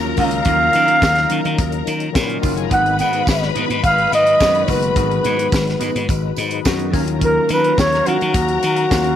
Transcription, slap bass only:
0.00 0.12 D#2 loud
0.18 0.40 C#2 medium
0.46 0.68 D#2 loud
0.75 0.97 D#3 loud
1.02 1.24 D#2 loud
1.31 1.42 D#3 loud
1.45 1.56 D#3 loud
1.59 1.80 D#2 loud
1.87 2.09 D#3 loud
2.15 2.37 A#2 loud
2.44 2.65 F#1 medium
2.71 3.01 G#1 loud
3.00 3.21 G#2 loud
3.28 3.49 G#1 medium
3.56 3.67 G#2 loud
3.70 3.81 G#2 medium
3.84 4.05 G#1 loud
4.12 4.34 G#2 loud
4.41 4.62 F#2 medium
4.68 4.90 F#1 medium
4.96 5.18 G#1 loud
5.25 5.46 G#2 loud
5.52 5.74 G#1 loud
5.81 5.92 G#2 loud
5.95 6.06 G#2 loud
6.09 6.31 G#1 medium
6.37 6.59 G#2 loud
6.66 6.94 F#2 loud
6.94 7.37 D#2 loud
7.50 7.72 D#3 loud
7.78 8.00 D#2 loud
8.08 8.18 D#3 loud
8.22 8.32 D#3 loud
8.35 8.56 D#2 loud
8.64 8.85 D#3 loud
8.91 9.13 D#2 loud

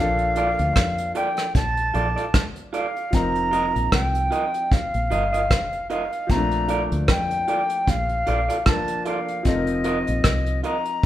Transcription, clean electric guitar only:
0.36 0.48 F4 medium
0.36 0.49 A4 medium
0.36 0.49 D5 medium
1.15 1.27 F4 medium
1.15 1.28 A4 medium
1.15 1.28 D5 medium
1.94 2.06 F4 medium
1.94 2.06 A4 medium
1.94 2.07 D5 medium
2.16 2.25 F4 medium
2.16 2.24 A4 medium
2.16 2.24 D5 medium
2.73 2.85 F4 medium
2.73 2.86 A4 medium
2.73 2.86 D5 medium
3.51 3.64 F4 medium
3.51 3.64 A#4 medium
3.51 3.65 D#5 medium
4.31 4.43 F4 medium
4.31 4.43 A#4 medium
4.31 4.44 D#5 medium
5.10 5.22 F4 medium
5.10 5.23 A#4 medium
5.10 5.23 D#5 medium
5.33 5.41 F4 medium
5.33 5.41 A#4 medium
5.33 5.40 D#5 medium
5.90 6.02 F4 medium
5.90 6.02 A#4 medium
5.90 6.02 D#5 medium
6.68 6.81 F4 medium
6.68 6.81 A4 medium
6.68 6.81 D5 medium
7.48 7.60 F4 medium
7.48 7.60 A4 medium
7.48 7.60 D5 medium
8.27 8.39 F4 medium
8.27 8.39 A4 medium
8.27 8.39 D5 medium
8.49 8.57 F4 soft
8.49 8.57 A4 medium
8.49 8.56 D5 medium
9.05 9.18 F4 medium
9.05 9.18 A4 medium
9.05 9.18 D5 medium
9.84 9.97 F4 medium
9.84 9.97 A#4 medium
9.84 9.97 D#5 medium
10.63 10.76 F4 medium
10.63 10.76 A#4 medium
10.63 10.76 D#5 medium

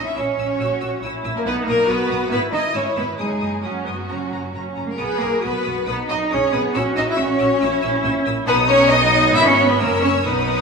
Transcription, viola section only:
0.00 0.60 C#4 medium
0.60 1.04 F#4 medium
1.03 1.46 E4 medium
1.46 1.89 D#4 medium
1.89 2.32 F#4 medium
2.32 3.19 E4 medium
3.19 3.59 D#4 medium
3.63 3.85 C#4 medium
3.86 4.09 B3 medium
4.09 4.53 C#4 medium
4.54 4.98 C#4 medium
4.99 5.40 G#4 medium
5.43 5.87 F#4 medium
5.87 6.30 D#4 medium
6.31 6.75 G#4 medium
6.75 7.62 F#4 medium
7.62 8.46 E4 medium
8.47 8.90 D#4 medium
8.90 9.77 B3 loud
9.78 10.25 C#4 medium
10.25 10.61 D#4 medium

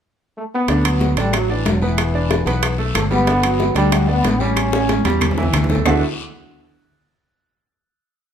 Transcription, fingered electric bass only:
0.68 1.14 D2 medium
1.17 1.62 A1 medium
1.66 2.41 E1 medium
2.46 2.92 B1 medium
2.94 3.70 G1 medium
3.75 4.21 D2 medium
4.24 4.99 A1 medium
5.05 5.50 E2 medium
5.53 5.82 D2 medium
5.86 6.01 D2 medium

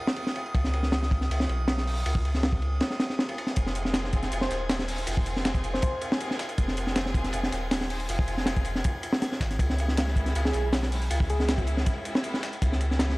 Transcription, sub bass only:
0.55 1.29 C#2 loud
1.30 1.47 C#2 medium
1.49 2.04 B1 medium
2.06 2.81 C#2 loud
3.57 4.31 F1 loud
4.32 4.49 F1 medium
4.51 5.06 D#1 medium
5.07 5.81 F1 loud
6.58 7.32 F1 loud
7.34 7.51 F1 medium
7.53 8.08 D#1 medium
8.09 8.83 F1 loud
9.40 9.58 G#1 medium
9.59 10.34 C#2 loud
10.36 10.53 C#2 medium
10.54 11.10 B1 medium
11.11 11.85 C#2 loud
12.62 13.18 C#2 loud

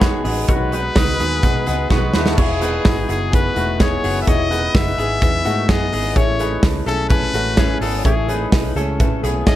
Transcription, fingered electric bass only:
0.00 0.18 B1 medium
0.25 0.45 A1 medium
0.49 0.89 B1 loud
0.96 1.16 C#2 medium
1.19 1.40 D#2 loud
1.43 1.63 B2 loud
1.67 1.87 C#2 medium
1.90 2.11 B1 medium
2.14 2.34 D#2 loud
2.38 2.78 E1 loud
2.85 3.05 G#1 medium
3.09 3.49 F#1 medium
3.56 3.96 E1 medium
4.04 4.24 F#1 medium
4.27 4.67 E1 loud
4.75 4.95 F#1 loud
4.98 5.18 G#1 medium
5.22 5.42 E2 loud
5.46 5.65 G#2 medium
5.69 5.89 F#2 medium
5.92 6.12 G#1 medium
6.16 6.56 A1 loud
6.63 6.83 C#2 medium
6.86 7.27 B1 loud
7.34 7.74 A1 medium
7.81 8.01 G#1 medium
8.05 8.45 A1 loud
8.52 8.72 B1 loud
8.76 9.01 C#2 loud
9.00 9.20 A2 loud
9.23 9.43 B1 medium
9.47 9.56 A1 medium

